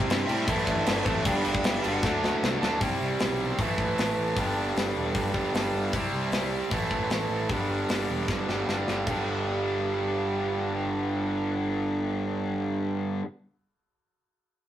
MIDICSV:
0, 0, Header, 1, 6, 480
1, 0, Start_track
1, 0, Key_signature, 1, "major"
1, 0, Tempo, 389610
1, 1540, Time_signature, 4, 2, 24, 8
1, 6346, Tempo, 393185
1, 17983, End_track
2, 0, Start_track
2, 0, Title_t, "Lead electric guitar"
2, 0, Program_c, 0, 29
2, 0, Note_on_c, 0, 67, 88
2, 0, Note_on_c, 0, 79, 122
2, 289, Note_off_c, 0, 79, 0
2, 310, Note_off_c, 0, 67, 0
2, 331, Note_on_c, 0, 76, 90
2, 371, Note_on_c, 0, 64, 74
2, 547, Note_off_c, 0, 76, 0
2, 562, Note_on_c, 0, 76, 97
2, 581, Note_off_c, 0, 64, 0
2, 598, Note_on_c, 0, 64, 78
2, 801, Note_on_c, 0, 74, 92
2, 814, Note_off_c, 0, 64, 0
2, 819, Note_off_c, 0, 76, 0
2, 835, Note_on_c, 0, 62, 68
2, 1274, Note_off_c, 0, 62, 0
2, 1288, Note_off_c, 0, 74, 0
2, 1293, Note_on_c, 0, 72, 99
2, 1314, Note_on_c, 0, 60, 79
2, 1530, Note_off_c, 0, 60, 0
2, 1544, Note_off_c, 0, 72, 0
2, 1552, Note_on_c, 0, 74, 107
2, 1572, Note_on_c, 0, 62, 80
2, 2002, Note_off_c, 0, 62, 0
2, 2038, Note_on_c, 0, 76, 95
2, 2039, Note_off_c, 0, 74, 0
2, 2049, Note_on_c, 0, 64, 73
2, 2258, Note_off_c, 0, 64, 0
2, 2275, Note_off_c, 0, 76, 0
2, 2283, Note_on_c, 0, 66, 78
2, 2286, Note_on_c, 0, 78, 74
2, 3180, Note_off_c, 0, 78, 0
2, 3181, Note_off_c, 0, 66, 0
2, 17983, End_track
3, 0, Start_track
3, 0, Title_t, "Distorted electric guitar"
3, 0, Program_c, 1, 30
3, 0, Note_on_c, 1, 64, 109
3, 582, Note_off_c, 1, 64, 0
3, 603, Note_on_c, 1, 60, 100
3, 615, Note_on_c, 1, 64, 121
3, 1536, Note_off_c, 1, 60, 0
3, 1542, Note_off_c, 1, 64, 0
3, 1557, Note_on_c, 1, 59, 124
3, 1568, Note_on_c, 1, 62, 122
3, 2492, Note_off_c, 1, 59, 0
3, 2497, Note_off_c, 1, 62, 0
3, 2514, Note_on_c, 1, 54, 91
3, 3451, Note_off_c, 1, 54, 0
3, 3461, Note_on_c, 1, 52, 89
3, 3482, Note_on_c, 1, 64, 104
3, 4406, Note_off_c, 1, 52, 0
3, 4417, Note_off_c, 1, 64, 0
3, 4443, Note_on_c, 1, 60, 82
3, 4450, Note_on_c, 1, 64, 86
3, 5380, Note_off_c, 1, 60, 0
3, 5383, Note_off_c, 1, 64, 0
3, 5390, Note_on_c, 1, 59, 102
3, 5400, Note_on_c, 1, 62, 102
3, 7293, Note_off_c, 1, 59, 0
3, 7297, Note_off_c, 1, 62, 0
3, 7320, Note_on_c, 1, 64, 106
3, 8254, Note_off_c, 1, 64, 0
3, 8270, Note_on_c, 1, 60, 83
3, 8282, Note_on_c, 1, 64, 93
3, 9209, Note_off_c, 1, 60, 0
3, 9214, Note_off_c, 1, 64, 0
3, 9225, Note_on_c, 1, 59, 86
3, 9226, Note_on_c, 1, 62, 95
3, 11125, Note_off_c, 1, 59, 0
3, 11125, Note_off_c, 1, 62, 0
3, 11160, Note_on_c, 1, 59, 104
3, 11161, Note_on_c, 1, 62, 90
3, 16243, Note_off_c, 1, 59, 0
3, 16244, Note_off_c, 1, 62, 0
3, 17983, End_track
4, 0, Start_track
4, 0, Title_t, "Distorted electric guitar"
4, 0, Program_c, 2, 30
4, 0, Note_on_c, 2, 48, 106
4, 0, Note_on_c, 2, 55, 96
4, 0, Note_on_c, 2, 60, 96
4, 314, Note_off_c, 2, 60, 0
4, 328, Note_on_c, 2, 60, 92
4, 335, Note_off_c, 2, 48, 0
4, 344, Note_off_c, 2, 55, 0
4, 358, Note_on_c, 2, 55, 82
4, 382, Note_on_c, 2, 48, 80
4, 561, Note_off_c, 2, 60, 0
4, 568, Note_off_c, 2, 48, 0
4, 573, Note_on_c, 2, 45, 93
4, 576, Note_off_c, 2, 55, 0
4, 602, Note_on_c, 2, 52, 102
4, 615, Note_on_c, 2, 57, 105
4, 1281, Note_off_c, 2, 45, 0
4, 1288, Note_off_c, 2, 57, 0
4, 1296, Note_off_c, 2, 52, 0
4, 1303, Note_on_c, 2, 57, 93
4, 1323, Note_on_c, 2, 52, 89
4, 1339, Note_on_c, 2, 45, 83
4, 1527, Note_off_c, 2, 57, 0
4, 1537, Note_off_c, 2, 52, 0
4, 1543, Note_on_c, 2, 43, 92
4, 1545, Note_off_c, 2, 45, 0
4, 1566, Note_on_c, 2, 50, 89
4, 1586, Note_on_c, 2, 55, 112
4, 2228, Note_off_c, 2, 55, 0
4, 2242, Note_on_c, 2, 55, 92
4, 2245, Note_off_c, 2, 43, 0
4, 2250, Note_off_c, 2, 50, 0
4, 2265, Note_on_c, 2, 50, 90
4, 2282, Note_on_c, 2, 43, 65
4, 2476, Note_off_c, 2, 55, 0
4, 2484, Note_off_c, 2, 50, 0
4, 2496, Note_off_c, 2, 43, 0
4, 2498, Note_on_c, 2, 50, 96
4, 2513, Note_on_c, 2, 57, 105
4, 2528, Note_on_c, 2, 62, 105
4, 3197, Note_off_c, 2, 62, 0
4, 3203, Note_off_c, 2, 50, 0
4, 3211, Note_off_c, 2, 57, 0
4, 3212, Note_on_c, 2, 62, 98
4, 3239, Note_on_c, 2, 57, 76
4, 3247, Note_on_c, 2, 50, 73
4, 3436, Note_off_c, 2, 50, 0
4, 3440, Note_off_c, 2, 62, 0
4, 3441, Note_on_c, 2, 48, 77
4, 3454, Note_off_c, 2, 57, 0
4, 3465, Note_on_c, 2, 55, 82
4, 3484, Note_on_c, 2, 60, 85
4, 4396, Note_off_c, 2, 48, 0
4, 4408, Note_off_c, 2, 55, 0
4, 4418, Note_off_c, 2, 60, 0
4, 4418, Note_on_c, 2, 45, 82
4, 4449, Note_on_c, 2, 52, 85
4, 4464, Note_on_c, 2, 57, 83
4, 5367, Note_off_c, 2, 45, 0
4, 5382, Note_on_c, 2, 43, 76
4, 5383, Note_off_c, 2, 52, 0
4, 5390, Note_off_c, 2, 57, 0
4, 5405, Note_on_c, 2, 50, 83
4, 5415, Note_on_c, 2, 55, 92
4, 6552, Note_off_c, 2, 55, 0
4, 6566, Note_on_c, 2, 55, 84
4, 6571, Note_off_c, 2, 43, 0
4, 6574, Note_off_c, 2, 50, 0
4, 6588, Note_on_c, 2, 50, 77
4, 6598, Note_on_c, 2, 43, 72
4, 6801, Note_off_c, 2, 55, 0
4, 6810, Note_off_c, 2, 43, 0
4, 6812, Note_off_c, 2, 50, 0
4, 6825, Note_on_c, 2, 43, 63
4, 6836, Note_on_c, 2, 50, 74
4, 6856, Note_on_c, 2, 55, 84
4, 7289, Note_off_c, 2, 43, 0
4, 7292, Note_off_c, 2, 50, 0
4, 7297, Note_on_c, 2, 48, 69
4, 7304, Note_off_c, 2, 55, 0
4, 7329, Note_on_c, 2, 55, 85
4, 7333, Note_on_c, 2, 60, 92
4, 8233, Note_off_c, 2, 48, 0
4, 8238, Note_on_c, 2, 45, 75
4, 8259, Note_off_c, 2, 55, 0
4, 8261, Note_off_c, 2, 60, 0
4, 8265, Note_on_c, 2, 52, 74
4, 8270, Note_on_c, 2, 57, 88
4, 9192, Note_off_c, 2, 45, 0
4, 9206, Note_off_c, 2, 52, 0
4, 9209, Note_off_c, 2, 57, 0
4, 9214, Note_on_c, 2, 43, 69
4, 9239, Note_on_c, 2, 50, 82
4, 9252, Note_on_c, 2, 55, 88
4, 10396, Note_off_c, 2, 55, 0
4, 10400, Note_off_c, 2, 43, 0
4, 10411, Note_on_c, 2, 55, 82
4, 10412, Note_off_c, 2, 50, 0
4, 10430, Note_on_c, 2, 50, 71
4, 10443, Note_on_c, 2, 43, 69
4, 10616, Note_off_c, 2, 43, 0
4, 10625, Note_off_c, 2, 50, 0
4, 10630, Note_on_c, 2, 43, 63
4, 10639, Note_off_c, 2, 55, 0
4, 10639, Note_on_c, 2, 50, 68
4, 10658, Note_on_c, 2, 55, 75
4, 11103, Note_off_c, 2, 43, 0
4, 11113, Note_off_c, 2, 50, 0
4, 11118, Note_on_c, 2, 43, 77
4, 11122, Note_off_c, 2, 55, 0
4, 11143, Note_on_c, 2, 50, 68
4, 11157, Note_on_c, 2, 55, 79
4, 16201, Note_off_c, 2, 43, 0
4, 16226, Note_off_c, 2, 50, 0
4, 16240, Note_off_c, 2, 55, 0
4, 17983, End_track
5, 0, Start_track
5, 0, Title_t, "Picked electric bass"
5, 0, Program_c, 3, 34
5, 132, Note_on_c, 3, 43, 100
5, 292, Note_off_c, 3, 43, 0
5, 369, Note_on_c, 3, 45, 104
5, 530, Note_off_c, 3, 45, 0
5, 592, Note_on_c, 3, 33, 105
5, 758, Note_off_c, 3, 33, 0
5, 829, Note_on_c, 3, 33, 104
5, 996, Note_off_c, 3, 33, 0
5, 1080, Note_on_c, 3, 31, 97
5, 1243, Note_off_c, 3, 31, 0
5, 1313, Note_on_c, 3, 33, 94
5, 1546, Note_on_c, 3, 31, 113
5, 1565, Note_off_c, 3, 33, 0
5, 1714, Note_off_c, 3, 31, 0
5, 1790, Note_on_c, 3, 31, 109
5, 1956, Note_off_c, 3, 31, 0
5, 2028, Note_on_c, 3, 31, 87
5, 2195, Note_off_c, 3, 31, 0
5, 2279, Note_on_c, 3, 31, 91
5, 2442, Note_off_c, 3, 31, 0
5, 2504, Note_on_c, 3, 38, 98
5, 2842, Note_off_c, 3, 38, 0
5, 2995, Note_on_c, 3, 36, 90
5, 3159, Note_off_c, 3, 36, 0
5, 3229, Note_on_c, 3, 38, 95
5, 3465, Note_on_c, 3, 36, 92
5, 3483, Note_off_c, 3, 38, 0
5, 3647, Note_off_c, 3, 36, 0
5, 3705, Note_on_c, 3, 36, 86
5, 3888, Note_off_c, 3, 36, 0
5, 3964, Note_on_c, 3, 35, 82
5, 4325, Note_off_c, 3, 35, 0
5, 4418, Note_on_c, 3, 33, 87
5, 4604, Note_off_c, 3, 33, 0
5, 4667, Note_on_c, 3, 33, 78
5, 4850, Note_off_c, 3, 33, 0
5, 4913, Note_on_c, 3, 33, 81
5, 5094, Note_off_c, 3, 33, 0
5, 5151, Note_on_c, 3, 33, 87
5, 5333, Note_off_c, 3, 33, 0
5, 5383, Note_on_c, 3, 31, 92
5, 5569, Note_off_c, 3, 31, 0
5, 5610, Note_on_c, 3, 31, 90
5, 5801, Note_off_c, 3, 31, 0
5, 5859, Note_on_c, 3, 31, 84
5, 6047, Note_off_c, 3, 31, 0
5, 6115, Note_on_c, 3, 28, 81
5, 6297, Note_off_c, 3, 28, 0
5, 6343, Note_on_c, 3, 31, 80
5, 6529, Note_off_c, 3, 31, 0
5, 6577, Note_on_c, 3, 31, 84
5, 6765, Note_off_c, 3, 31, 0
5, 6830, Note_on_c, 3, 31, 87
5, 7012, Note_off_c, 3, 31, 0
5, 7065, Note_on_c, 3, 31, 83
5, 7249, Note_off_c, 3, 31, 0
5, 7307, Note_on_c, 3, 36, 92
5, 7490, Note_off_c, 3, 36, 0
5, 7538, Note_on_c, 3, 36, 85
5, 7724, Note_off_c, 3, 36, 0
5, 7762, Note_on_c, 3, 36, 85
5, 8138, Note_off_c, 3, 36, 0
5, 8261, Note_on_c, 3, 33, 95
5, 8445, Note_off_c, 3, 33, 0
5, 8496, Note_on_c, 3, 33, 79
5, 8682, Note_off_c, 3, 33, 0
5, 8727, Note_on_c, 3, 33, 82
5, 8916, Note_off_c, 3, 33, 0
5, 8960, Note_on_c, 3, 33, 81
5, 9152, Note_off_c, 3, 33, 0
5, 9209, Note_on_c, 3, 31, 90
5, 9397, Note_off_c, 3, 31, 0
5, 9446, Note_on_c, 3, 31, 84
5, 9635, Note_off_c, 3, 31, 0
5, 9697, Note_on_c, 3, 31, 74
5, 9881, Note_off_c, 3, 31, 0
5, 9935, Note_on_c, 3, 28, 76
5, 10120, Note_off_c, 3, 28, 0
5, 10165, Note_on_c, 3, 31, 80
5, 10354, Note_off_c, 3, 31, 0
5, 10419, Note_on_c, 3, 31, 75
5, 10603, Note_off_c, 3, 31, 0
5, 10653, Note_on_c, 3, 31, 78
5, 10839, Note_off_c, 3, 31, 0
5, 10906, Note_on_c, 3, 31, 73
5, 11087, Note_off_c, 3, 31, 0
5, 11140, Note_on_c, 3, 31, 80
5, 16174, Note_off_c, 3, 31, 0
5, 17983, End_track
6, 0, Start_track
6, 0, Title_t, "Drums"
6, 121, Note_on_c, 9, 49, 87
6, 136, Note_on_c, 9, 38, 123
6, 245, Note_off_c, 9, 49, 0
6, 259, Note_off_c, 9, 38, 0
6, 357, Note_on_c, 9, 49, 64
6, 480, Note_off_c, 9, 49, 0
6, 588, Note_on_c, 9, 36, 120
6, 588, Note_on_c, 9, 49, 85
6, 711, Note_off_c, 9, 36, 0
6, 712, Note_off_c, 9, 49, 0
6, 825, Note_on_c, 9, 49, 61
6, 826, Note_on_c, 9, 36, 78
6, 948, Note_off_c, 9, 49, 0
6, 950, Note_off_c, 9, 36, 0
6, 1064, Note_on_c, 9, 49, 98
6, 1079, Note_on_c, 9, 38, 123
6, 1188, Note_off_c, 9, 49, 0
6, 1202, Note_off_c, 9, 38, 0
6, 1305, Note_on_c, 9, 36, 89
6, 1306, Note_on_c, 9, 49, 65
6, 1428, Note_off_c, 9, 36, 0
6, 1429, Note_off_c, 9, 49, 0
6, 1544, Note_on_c, 9, 36, 127
6, 1546, Note_on_c, 9, 49, 98
6, 1667, Note_off_c, 9, 36, 0
6, 1669, Note_off_c, 9, 49, 0
6, 1782, Note_on_c, 9, 49, 73
6, 1904, Note_on_c, 9, 36, 89
6, 1906, Note_off_c, 9, 49, 0
6, 2020, Note_on_c, 9, 49, 97
6, 2027, Note_off_c, 9, 36, 0
6, 2035, Note_on_c, 9, 38, 127
6, 2143, Note_off_c, 9, 49, 0
6, 2158, Note_off_c, 9, 38, 0
6, 2266, Note_on_c, 9, 49, 80
6, 2390, Note_off_c, 9, 49, 0
6, 2502, Note_on_c, 9, 36, 106
6, 2521, Note_on_c, 9, 38, 69
6, 2625, Note_off_c, 9, 36, 0
6, 2644, Note_off_c, 9, 38, 0
6, 2762, Note_on_c, 9, 38, 67
6, 2885, Note_off_c, 9, 38, 0
6, 3003, Note_on_c, 9, 38, 102
6, 3127, Note_off_c, 9, 38, 0
6, 3241, Note_on_c, 9, 38, 92
6, 3364, Note_off_c, 9, 38, 0
6, 3463, Note_on_c, 9, 36, 115
6, 3464, Note_on_c, 9, 46, 57
6, 3586, Note_off_c, 9, 36, 0
6, 3587, Note_off_c, 9, 46, 0
6, 3935, Note_on_c, 9, 46, 51
6, 3949, Note_on_c, 9, 38, 111
6, 4058, Note_off_c, 9, 46, 0
6, 4073, Note_off_c, 9, 38, 0
6, 4419, Note_on_c, 9, 36, 108
6, 4421, Note_on_c, 9, 46, 53
6, 4542, Note_off_c, 9, 36, 0
6, 4545, Note_off_c, 9, 46, 0
6, 4657, Note_on_c, 9, 36, 65
6, 4780, Note_off_c, 9, 36, 0
6, 4904, Note_on_c, 9, 46, 53
6, 4919, Note_on_c, 9, 38, 103
6, 5027, Note_off_c, 9, 46, 0
6, 5042, Note_off_c, 9, 38, 0
6, 5378, Note_on_c, 9, 36, 115
6, 5380, Note_on_c, 9, 46, 60
6, 5502, Note_off_c, 9, 36, 0
6, 5503, Note_off_c, 9, 46, 0
6, 5870, Note_on_c, 9, 46, 53
6, 5884, Note_on_c, 9, 38, 104
6, 5993, Note_off_c, 9, 46, 0
6, 6008, Note_off_c, 9, 38, 0
6, 6341, Note_on_c, 9, 46, 51
6, 6343, Note_on_c, 9, 36, 97
6, 6463, Note_off_c, 9, 46, 0
6, 6465, Note_off_c, 9, 36, 0
6, 6581, Note_on_c, 9, 36, 70
6, 6703, Note_off_c, 9, 36, 0
6, 6826, Note_on_c, 9, 46, 62
6, 6841, Note_on_c, 9, 38, 106
6, 6948, Note_off_c, 9, 46, 0
6, 6963, Note_off_c, 9, 38, 0
6, 7300, Note_on_c, 9, 36, 116
6, 7303, Note_on_c, 9, 46, 53
6, 7422, Note_off_c, 9, 36, 0
6, 7425, Note_off_c, 9, 46, 0
6, 7774, Note_on_c, 9, 46, 53
6, 7789, Note_on_c, 9, 38, 101
6, 7896, Note_off_c, 9, 46, 0
6, 7911, Note_off_c, 9, 38, 0
6, 8249, Note_on_c, 9, 46, 47
6, 8254, Note_on_c, 9, 36, 100
6, 8371, Note_off_c, 9, 46, 0
6, 8376, Note_off_c, 9, 36, 0
6, 8491, Note_on_c, 9, 36, 71
6, 8613, Note_off_c, 9, 36, 0
6, 8725, Note_on_c, 9, 46, 49
6, 8740, Note_on_c, 9, 38, 104
6, 8847, Note_off_c, 9, 46, 0
6, 8862, Note_off_c, 9, 38, 0
6, 9202, Note_on_c, 9, 46, 48
6, 9208, Note_on_c, 9, 36, 116
6, 9325, Note_off_c, 9, 46, 0
6, 9330, Note_off_c, 9, 36, 0
6, 9688, Note_on_c, 9, 46, 55
6, 9702, Note_on_c, 9, 38, 107
6, 9810, Note_off_c, 9, 46, 0
6, 9824, Note_off_c, 9, 38, 0
6, 10170, Note_on_c, 9, 36, 99
6, 10180, Note_on_c, 9, 38, 59
6, 10292, Note_off_c, 9, 36, 0
6, 10302, Note_off_c, 9, 38, 0
6, 10424, Note_on_c, 9, 38, 57
6, 10546, Note_off_c, 9, 38, 0
6, 10665, Note_on_c, 9, 38, 73
6, 10787, Note_off_c, 9, 38, 0
6, 10899, Note_on_c, 9, 38, 69
6, 11021, Note_off_c, 9, 38, 0
6, 11129, Note_on_c, 9, 36, 82
6, 11131, Note_on_c, 9, 43, 89
6, 11131, Note_on_c, 9, 49, 82
6, 11251, Note_off_c, 9, 36, 0
6, 11253, Note_off_c, 9, 43, 0
6, 11253, Note_off_c, 9, 49, 0
6, 17983, End_track
0, 0, End_of_file